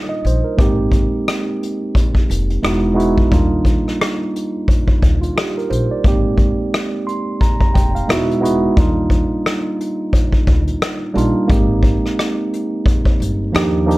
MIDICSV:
0, 0, Header, 1, 4, 480
1, 0, Start_track
1, 0, Tempo, 681818
1, 414, Time_signature, 4, 2, 24, 8
1, 9841, End_track
2, 0, Start_track
2, 0, Title_t, "Tine electric piano"
2, 0, Program_c, 0, 4
2, 0, Control_c, 0, 64, 127
2, 64, Note_on_c, 0, 75, 67
2, 164, Note_off_c, 0, 75, 0
2, 187, Note_on_c, 0, 72, 66
2, 312, Note_on_c, 0, 70, 57
2, 313, Note_off_c, 0, 72, 0
2, 403, Note_on_c, 0, 56, 82
2, 407, Note_on_c, 0, 58, 70
2, 416, Note_on_c, 0, 60, 81
2, 420, Note_on_c, 0, 63, 83
2, 423, Control_c, 0, 64, 0
2, 426, Note_on_c, 0, 67, 98
2, 540, Note_off_c, 0, 70, 0
2, 566, Control_c, 0, 64, 127
2, 1018, Note_off_c, 0, 56, 0
2, 1020, Note_off_c, 0, 58, 0
2, 1024, Note_off_c, 0, 60, 0
2, 1026, Note_off_c, 0, 63, 0
2, 1029, Note_off_c, 0, 67, 0
2, 1847, Note_on_c, 0, 56, 86
2, 1852, Note_on_c, 0, 59, 76
2, 1858, Note_on_c, 0, 63, 86
2, 1863, Control_c, 0, 64, 0
2, 1863, Note_on_c, 0, 64, 78
2, 1869, Note_on_c, 0, 66, 85
2, 2004, Control_c, 0, 64, 127
2, 2050, Note_off_c, 0, 56, 0
2, 2053, Note_off_c, 0, 59, 0
2, 2055, Note_off_c, 0, 63, 0
2, 2058, Note_off_c, 0, 64, 0
2, 2061, Note_off_c, 0, 66, 0
2, 2068, Note_on_c, 0, 56, 97
2, 2073, Note_on_c, 0, 59, 78
2, 2079, Note_on_c, 0, 63, 73
2, 2085, Note_on_c, 0, 64, 88
2, 2090, Note_on_c, 0, 66, 100
2, 2243, Note_off_c, 0, 56, 0
2, 2246, Note_off_c, 0, 59, 0
2, 2249, Note_off_c, 0, 63, 0
2, 2252, Note_off_c, 0, 64, 0
2, 2254, Note_off_c, 0, 66, 0
2, 2326, Note_on_c, 0, 55, 91
2, 2331, Note_on_c, 0, 58, 83
2, 2339, Note_on_c, 0, 62, 84
2, 2343, Control_c, 0, 64, 0
2, 2344, Note_on_c, 0, 63, 76
2, 2348, Note_on_c, 0, 65, 89
2, 2481, Control_c, 0, 64, 127
2, 2939, Note_off_c, 0, 55, 0
2, 2942, Note_off_c, 0, 58, 0
2, 2946, Note_off_c, 0, 62, 0
2, 2948, Note_off_c, 0, 63, 0
2, 2950, Note_off_c, 0, 65, 0
2, 3670, Note_on_c, 0, 65, 62
2, 3767, Note_off_c, 0, 65, 0
2, 3776, Note_on_c, 0, 67, 67
2, 3907, Note_off_c, 0, 67, 0
2, 3926, Note_on_c, 0, 70, 63
2, 4014, Note_on_c, 0, 72, 70
2, 4016, Note_off_c, 0, 70, 0
2, 4146, Note_off_c, 0, 72, 0
2, 4163, Note_on_c, 0, 74, 61
2, 4255, Note_on_c, 0, 56, 82
2, 4260, Note_on_c, 0, 58, 75
2, 4263, Control_c, 0, 64, 0
2, 4267, Note_on_c, 0, 60, 74
2, 4273, Note_on_c, 0, 63, 78
2, 4279, Note_on_c, 0, 67, 97
2, 4372, Control_c, 0, 64, 127
2, 4386, Note_off_c, 0, 74, 0
2, 4864, Note_off_c, 0, 56, 0
2, 4866, Note_off_c, 0, 58, 0
2, 4870, Note_off_c, 0, 60, 0
2, 4873, Note_off_c, 0, 63, 0
2, 4876, Note_off_c, 0, 67, 0
2, 4976, Note_on_c, 0, 84, 64
2, 5198, Note_off_c, 0, 84, 0
2, 5217, Note_on_c, 0, 82, 68
2, 5345, Note_off_c, 0, 82, 0
2, 5353, Note_on_c, 0, 82, 64
2, 5447, Note_off_c, 0, 82, 0
2, 5451, Note_on_c, 0, 79, 72
2, 5581, Note_off_c, 0, 79, 0
2, 5597, Note_on_c, 0, 77, 66
2, 5685, Note_on_c, 0, 56, 86
2, 5689, Note_off_c, 0, 77, 0
2, 5693, Note_on_c, 0, 59, 80
2, 5696, Note_on_c, 0, 63, 85
2, 5697, Note_on_c, 0, 76, 76
2, 5702, Control_c, 0, 64, 0
2, 5703, Note_on_c, 0, 64, 83
2, 5710, Note_on_c, 0, 66, 108
2, 5832, Control_c, 0, 64, 127
2, 5889, Note_off_c, 0, 56, 0
2, 5893, Note_off_c, 0, 59, 0
2, 5895, Note_off_c, 0, 63, 0
2, 5898, Note_off_c, 0, 64, 0
2, 5902, Note_off_c, 0, 66, 0
2, 5916, Note_on_c, 0, 56, 85
2, 5918, Note_off_c, 0, 76, 0
2, 5921, Note_on_c, 0, 59, 80
2, 5927, Note_on_c, 0, 63, 79
2, 5928, Note_on_c, 0, 75, 70
2, 5934, Note_on_c, 0, 64, 84
2, 5941, Note_on_c, 0, 66, 98
2, 6087, Note_off_c, 0, 56, 0
2, 6090, Note_off_c, 0, 59, 0
2, 6093, Note_off_c, 0, 63, 0
2, 6096, Note_off_c, 0, 64, 0
2, 6100, Note_off_c, 0, 66, 0
2, 6154, Note_off_c, 0, 75, 0
2, 6171, Note_on_c, 0, 55, 90
2, 6178, Note_on_c, 0, 58, 76
2, 6182, Control_c, 0, 64, 0
2, 6184, Note_on_c, 0, 62, 80
2, 6188, Note_on_c, 0, 63, 85
2, 6195, Note_on_c, 0, 65, 99
2, 6296, Control_c, 0, 64, 127
2, 6782, Note_off_c, 0, 55, 0
2, 6785, Note_off_c, 0, 58, 0
2, 6788, Note_off_c, 0, 62, 0
2, 6790, Note_off_c, 0, 63, 0
2, 6794, Note_off_c, 0, 65, 0
2, 7842, Note_on_c, 0, 55, 105
2, 7848, Note_on_c, 0, 58, 81
2, 7852, Note_on_c, 0, 62, 87
2, 7859, Note_on_c, 0, 63, 81
2, 7864, Note_on_c, 0, 65, 100
2, 8010, Note_off_c, 0, 55, 0
2, 8013, Note_off_c, 0, 58, 0
2, 8015, Note_off_c, 0, 62, 0
2, 8019, Note_off_c, 0, 63, 0
2, 8021, Note_off_c, 0, 65, 0
2, 8071, Note_on_c, 0, 56, 83
2, 8080, Note_on_c, 0, 58, 92
2, 8085, Note_on_c, 0, 60, 78
2, 8091, Note_on_c, 0, 63, 80
2, 8098, Note_on_c, 0, 67, 91
2, 8104, Control_c, 0, 64, 0
2, 8223, Control_c, 0, 64, 127
2, 8692, Note_off_c, 0, 56, 0
2, 8696, Note_off_c, 0, 58, 0
2, 8699, Note_off_c, 0, 60, 0
2, 8702, Note_off_c, 0, 63, 0
2, 8705, Note_off_c, 0, 67, 0
2, 9520, Note_on_c, 0, 53, 91
2, 9524, Note_on_c, 0, 58, 77
2, 9530, Note_on_c, 0, 62, 77
2, 9536, Note_on_c, 0, 63, 81
2, 9542, Control_c, 0, 64, 0
2, 9543, Note_on_c, 0, 67, 98
2, 9675, Control_c, 0, 64, 127
2, 9726, Note_off_c, 0, 53, 0
2, 9729, Note_off_c, 0, 58, 0
2, 9732, Note_off_c, 0, 62, 0
2, 9734, Note_off_c, 0, 63, 0
2, 9738, Note_off_c, 0, 67, 0
2, 9757, Note_on_c, 0, 53, 93
2, 9762, Note_on_c, 0, 58, 80
2, 9769, Note_on_c, 0, 62, 89
2, 9772, Note_on_c, 0, 63, 96
2, 9780, Note_on_c, 0, 67, 97
2, 9841, Note_off_c, 0, 53, 0
2, 9841, Note_off_c, 0, 58, 0
2, 9841, Note_off_c, 0, 62, 0
2, 9841, Note_off_c, 0, 63, 0
2, 9841, Note_off_c, 0, 67, 0
2, 9841, End_track
3, 0, Start_track
3, 0, Title_t, "Upright bass"
3, 0, Program_c, 1, 32
3, 174, Note_on_c, 1, 34, 97
3, 288, Note_off_c, 1, 34, 0
3, 414, Note_on_c, 1, 32, 94
3, 726, Note_off_c, 1, 32, 0
3, 1617, Note_on_c, 1, 29, 82
3, 1813, Note_off_c, 1, 29, 0
3, 1853, Note_on_c, 1, 28, 101
3, 2249, Note_off_c, 1, 28, 0
3, 2337, Note_on_c, 1, 39, 93
3, 2648, Note_off_c, 1, 39, 0
3, 3539, Note_on_c, 1, 38, 92
3, 3734, Note_off_c, 1, 38, 0
3, 4017, Note_on_c, 1, 34, 93
3, 4130, Note_off_c, 1, 34, 0
3, 4258, Note_on_c, 1, 32, 94
3, 4569, Note_off_c, 1, 32, 0
3, 5459, Note_on_c, 1, 29, 89
3, 5655, Note_off_c, 1, 29, 0
3, 5697, Note_on_c, 1, 28, 104
3, 6091, Note_off_c, 1, 28, 0
3, 6173, Note_on_c, 1, 39, 98
3, 6486, Note_off_c, 1, 39, 0
3, 7375, Note_on_c, 1, 38, 95
3, 7572, Note_off_c, 1, 38, 0
3, 7853, Note_on_c, 1, 34, 92
3, 7968, Note_off_c, 1, 34, 0
3, 8093, Note_on_c, 1, 32, 116
3, 8406, Note_off_c, 1, 32, 0
3, 9294, Note_on_c, 1, 31, 81
3, 9492, Note_off_c, 1, 31, 0
3, 9537, Note_on_c, 1, 39, 117
3, 9841, Note_off_c, 1, 39, 0
3, 9841, End_track
4, 0, Start_track
4, 0, Title_t, "Drums"
4, 186, Note_on_c, 9, 42, 75
4, 256, Note_off_c, 9, 42, 0
4, 412, Note_on_c, 9, 36, 127
4, 420, Note_on_c, 9, 42, 82
4, 482, Note_off_c, 9, 36, 0
4, 491, Note_off_c, 9, 42, 0
4, 645, Note_on_c, 9, 36, 91
4, 651, Note_on_c, 9, 42, 63
4, 715, Note_off_c, 9, 36, 0
4, 722, Note_off_c, 9, 42, 0
4, 902, Note_on_c, 9, 37, 100
4, 906, Note_on_c, 9, 42, 79
4, 972, Note_off_c, 9, 37, 0
4, 977, Note_off_c, 9, 42, 0
4, 1148, Note_on_c, 9, 42, 52
4, 1218, Note_off_c, 9, 42, 0
4, 1372, Note_on_c, 9, 36, 100
4, 1384, Note_on_c, 9, 42, 68
4, 1443, Note_off_c, 9, 36, 0
4, 1455, Note_off_c, 9, 42, 0
4, 1511, Note_on_c, 9, 36, 84
4, 1582, Note_off_c, 9, 36, 0
4, 1624, Note_on_c, 9, 42, 75
4, 1694, Note_off_c, 9, 42, 0
4, 1761, Note_on_c, 9, 42, 49
4, 1831, Note_off_c, 9, 42, 0
4, 1861, Note_on_c, 9, 42, 77
4, 1862, Note_on_c, 9, 37, 122
4, 1931, Note_off_c, 9, 42, 0
4, 1932, Note_off_c, 9, 37, 0
4, 2110, Note_on_c, 9, 42, 76
4, 2180, Note_off_c, 9, 42, 0
4, 2236, Note_on_c, 9, 36, 93
4, 2306, Note_off_c, 9, 36, 0
4, 2335, Note_on_c, 9, 36, 127
4, 2344, Note_on_c, 9, 42, 69
4, 2405, Note_off_c, 9, 36, 0
4, 2415, Note_off_c, 9, 42, 0
4, 2568, Note_on_c, 9, 36, 93
4, 2576, Note_on_c, 9, 42, 62
4, 2639, Note_off_c, 9, 36, 0
4, 2647, Note_off_c, 9, 42, 0
4, 2731, Note_on_c, 9, 37, 36
4, 2802, Note_off_c, 9, 37, 0
4, 2826, Note_on_c, 9, 37, 96
4, 2831, Note_on_c, 9, 42, 70
4, 2897, Note_off_c, 9, 37, 0
4, 2901, Note_off_c, 9, 42, 0
4, 3069, Note_on_c, 9, 42, 55
4, 3139, Note_off_c, 9, 42, 0
4, 3295, Note_on_c, 9, 36, 96
4, 3312, Note_on_c, 9, 42, 68
4, 3365, Note_off_c, 9, 36, 0
4, 3383, Note_off_c, 9, 42, 0
4, 3433, Note_on_c, 9, 36, 86
4, 3503, Note_off_c, 9, 36, 0
4, 3538, Note_on_c, 9, 36, 101
4, 3546, Note_on_c, 9, 42, 75
4, 3608, Note_off_c, 9, 36, 0
4, 3616, Note_off_c, 9, 42, 0
4, 3683, Note_on_c, 9, 42, 50
4, 3754, Note_off_c, 9, 42, 0
4, 3784, Note_on_c, 9, 42, 69
4, 3785, Note_on_c, 9, 37, 116
4, 3854, Note_off_c, 9, 42, 0
4, 3855, Note_off_c, 9, 37, 0
4, 3935, Note_on_c, 9, 42, 38
4, 4005, Note_off_c, 9, 42, 0
4, 4030, Note_on_c, 9, 42, 77
4, 4101, Note_off_c, 9, 42, 0
4, 4255, Note_on_c, 9, 36, 117
4, 4265, Note_on_c, 9, 42, 73
4, 4326, Note_off_c, 9, 36, 0
4, 4335, Note_off_c, 9, 42, 0
4, 4488, Note_on_c, 9, 36, 84
4, 4497, Note_on_c, 9, 42, 54
4, 4559, Note_off_c, 9, 36, 0
4, 4567, Note_off_c, 9, 42, 0
4, 4746, Note_on_c, 9, 37, 96
4, 4751, Note_on_c, 9, 42, 72
4, 4816, Note_off_c, 9, 37, 0
4, 4821, Note_off_c, 9, 42, 0
4, 4989, Note_on_c, 9, 42, 58
4, 5059, Note_off_c, 9, 42, 0
4, 5215, Note_on_c, 9, 36, 91
4, 5230, Note_on_c, 9, 42, 59
4, 5286, Note_off_c, 9, 36, 0
4, 5300, Note_off_c, 9, 42, 0
4, 5354, Note_on_c, 9, 36, 89
4, 5425, Note_off_c, 9, 36, 0
4, 5459, Note_on_c, 9, 36, 98
4, 5471, Note_on_c, 9, 42, 69
4, 5529, Note_off_c, 9, 36, 0
4, 5541, Note_off_c, 9, 42, 0
4, 5604, Note_on_c, 9, 42, 49
4, 5674, Note_off_c, 9, 42, 0
4, 5702, Note_on_c, 9, 42, 79
4, 5703, Note_on_c, 9, 37, 124
4, 5773, Note_off_c, 9, 42, 0
4, 5774, Note_off_c, 9, 37, 0
4, 5852, Note_on_c, 9, 42, 38
4, 5922, Note_off_c, 9, 42, 0
4, 5950, Note_on_c, 9, 42, 78
4, 6020, Note_off_c, 9, 42, 0
4, 6174, Note_on_c, 9, 36, 126
4, 6182, Note_on_c, 9, 42, 73
4, 6244, Note_off_c, 9, 36, 0
4, 6252, Note_off_c, 9, 42, 0
4, 6406, Note_on_c, 9, 36, 84
4, 6413, Note_on_c, 9, 42, 63
4, 6476, Note_off_c, 9, 36, 0
4, 6483, Note_off_c, 9, 42, 0
4, 6661, Note_on_c, 9, 37, 87
4, 6666, Note_on_c, 9, 42, 68
4, 6732, Note_off_c, 9, 37, 0
4, 6736, Note_off_c, 9, 42, 0
4, 6905, Note_on_c, 9, 42, 62
4, 6975, Note_off_c, 9, 42, 0
4, 7131, Note_on_c, 9, 36, 90
4, 7146, Note_on_c, 9, 42, 65
4, 7201, Note_off_c, 9, 36, 0
4, 7216, Note_off_c, 9, 42, 0
4, 7269, Note_on_c, 9, 36, 78
4, 7339, Note_off_c, 9, 36, 0
4, 7373, Note_on_c, 9, 36, 102
4, 7378, Note_on_c, 9, 42, 65
4, 7443, Note_off_c, 9, 36, 0
4, 7448, Note_off_c, 9, 42, 0
4, 7515, Note_on_c, 9, 42, 46
4, 7585, Note_off_c, 9, 42, 0
4, 7617, Note_on_c, 9, 42, 73
4, 7618, Note_on_c, 9, 37, 125
4, 7687, Note_off_c, 9, 42, 0
4, 7689, Note_off_c, 9, 37, 0
4, 7869, Note_on_c, 9, 42, 70
4, 7939, Note_off_c, 9, 42, 0
4, 8093, Note_on_c, 9, 36, 126
4, 8105, Note_on_c, 9, 42, 75
4, 8163, Note_off_c, 9, 36, 0
4, 8175, Note_off_c, 9, 42, 0
4, 8326, Note_on_c, 9, 36, 94
4, 8336, Note_on_c, 9, 42, 62
4, 8396, Note_off_c, 9, 36, 0
4, 8406, Note_off_c, 9, 42, 0
4, 8488, Note_on_c, 9, 37, 37
4, 8558, Note_off_c, 9, 37, 0
4, 8584, Note_on_c, 9, 37, 85
4, 8588, Note_on_c, 9, 42, 81
4, 8654, Note_off_c, 9, 37, 0
4, 8659, Note_off_c, 9, 42, 0
4, 8825, Note_on_c, 9, 42, 60
4, 8896, Note_off_c, 9, 42, 0
4, 9051, Note_on_c, 9, 36, 102
4, 9067, Note_on_c, 9, 42, 69
4, 9122, Note_off_c, 9, 36, 0
4, 9137, Note_off_c, 9, 42, 0
4, 9190, Note_on_c, 9, 36, 90
4, 9261, Note_off_c, 9, 36, 0
4, 9306, Note_on_c, 9, 42, 74
4, 9376, Note_off_c, 9, 42, 0
4, 9544, Note_on_c, 9, 42, 75
4, 9545, Note_on_c, 9, 37, 112
4, 9614, Note_off_c, 9, 42, 0
4, 9615, Note_off_c, 9, 37, 0
4, 9791, Note_on_c, 9, 42, 74
4, 9841, Note_off_c, 9, 42, 0
4, 9841, End_track
0, 0, End_of_file